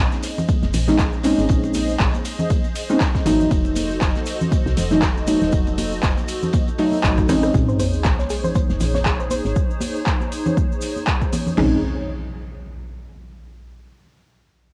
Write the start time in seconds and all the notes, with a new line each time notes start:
Already playing: G#3 C4 C#4 D#4 G#4 C5 D#5
0.11 snare, high conga, cabasa
0.23 snare, closed hi-hat, open hi-hat, ride, cabasa
0.38 low conga, cabasa
0.48 kick, closed hi-hat, ride, high conga, cabasa
0.62 F1, snare, cabasa
0.73 A#1, snare, closed hi-hat, open hi-hat, ride, low conga, cabasa
0.88 G#3 C4 C#4 D#4, snare, high conga, low conga, cabasa
0.98 kick, snare, clap, closed hi-hat, ride, cabasa
1.13 cabasa
1.23 G#3 C4 C#4 D#4, closed hi-hat, open hi-hat, ride, high conga, cabasa
1.38 G#1, snare, cabasa
1.49 A#1, kick, closed hi-hat, ride, cabasa
1.63 closed hi-hat, muted conga, cabasa
1.74 closed hi-hat, open hi-hat, ride, high conga, cabasa
1.89 muted conga, cabasa
1.99 A#1, kick, snare, clap, closed hi-hat, ride, cabasa
2.13 closed hi-hat, high conga, cabasa
2.25 closed hi-hat, open hi-hat, ride, cabasa
2.39 low conga, cabasa
2.50 kick, closed hi-hat, ride, high conga, cabasa
2.64 closed hi-hat, muted conga, cabasa
2.75 closed hi-hat, open hi-hat, ride, cabasa
2.89 G#3 C4 C#4 D#4, high conga, cabasa
3.00 kick, snare, clap, closed hi-hat, ride, cabasa
3.15 kick, snare, cabasa
3.25 G#1 F#3 A3 D#4, snare, closed hi-hat, open hi-hat, ride, muted conga, high conga, low conga, cabasa
3.40 low conga, cabasa
3.51 F1 F#4 A4 D#5, kick, closed hi-hat, ride, cabasa
3.65 muted conga, cabasa
3.75 closed hi-hat, open hi-hat, ride, high conga, cabasa
3.91 muted conga, cabasa
4.01 F1, kick, snare, clap, closed hi-hat, ride, cabasa
4.15 snare, high conga, cabasa
4.26 snare, closed hi-hat, open hi-hat, ride, cabasa
4.41 low conga, cabasa
4.51 kick, closed hi-hat, ride, high conga, cabasa
4.66 C2, snare, cabasa
4.77 F1, snare, closed hi-hat, open hi-hat, ride, low conga, cabasa
4.91 F#3 A3 D#4, snare, high conga, low conga, cabasa
5.02 kick, snare, clap, closed hi-hat, ride, cabasa
5.17 cabasa
5.27 F#3 A3 D#4, closed hi-hat, open hi-hat, ride, high conga, cabasa
5.41 D#1, snare, cabasa
5.52 F1, kick, closed hi-hat, ride, cabasa
5.67 closed hi-hat, muted conga, cabasa
5.78 closed hi-hat, open hi-hat, ride, high conga, cabasa
5.92 muted conga, cabasa
6.03 F1, kick, snare, clap, closed hi-hat, ride, cabasa
6.17 closed hi-hat, high conga, cabasa
6.28 closed hi-hat, open hi-hat, ride, cabasa
6.42 low conga, cabasa
6.53 kick, closed hi-hat, ride, high conga, cabasa
6.68 closed hi-hat, muted conga, cabasa
6.78 F#3 A3 D#4, closed hi-hat, open hi-hat, ride, cabasa
6.92 high conga, cabasa
7.04 A1 F#3 A3 D#4, kick, clap, closed hi-hat, ride, cabasa
7.17 kick, cross-stick, cabasa
7.29 G#3 C4 C#4 D#4, cross-stick, snare, closed hi-hat, open hi-hat, ride, muted conga, high conga, low conga, cabasa
7.43 cross-stick, low conga, cabasa
7.54 A#1 D#4 G#4 C5 C#5, kick, closed hi-hat, sub drop, cabasa
7.69 C5, cabasa
7.80 C5, closed hi-hat, open hi-hat, high conga, cabasa
7.93 cabasa
8.04 A#1, kick, snare, clap, closed hi-hat, cabasa
8.18 C#5, snare, high conga, cabasa
8.30 G#4, snare, closed hi-hat, open hi-hat, cabasa
8.44 C5, low conga, cabasa
8.55 C5, kick, closed hi-hat, high conga, cabasa
8.69 F1, snare, cabasa
8.80 A#1, snare, closed hi-hat, open hi-hat, low conga, cabasa
8.94 C#5, snare, high conga, low conga, cabasa
9.05 G#4, kick, snare, clap, closed hi-hat, cabasa
9.20 C5, cabasa
9.30 C5, closed hi-hat, open hi-hat, high conga, cabasa
9.45 G#1, snare, cabasa
9.56 kick, cabasa
9.71 cabasa
9.80 open hi-hat, high conga, cabasa
9.96 cabasa
10.06 kick, clap, cabasa
10.20 high conga, cabasa
10.32 open hi-hat, cabasa
10.46 low conga, cabasa
10.57 kick, high conga, cabasa
10.72 cabasa
10.81 open hi-hat, cabasa
10.96 high conga, cabasa
11.07 kick, clap, cabasa
11.21 kick, cabasa
11.33 open hi-hat, high conga, low conga, cabasa
11.46 low conga, cabasa
11.57 A#1 G#3 C4 C#4 D#4 G#4 C5 C#5, snare, floor tom, crash, impact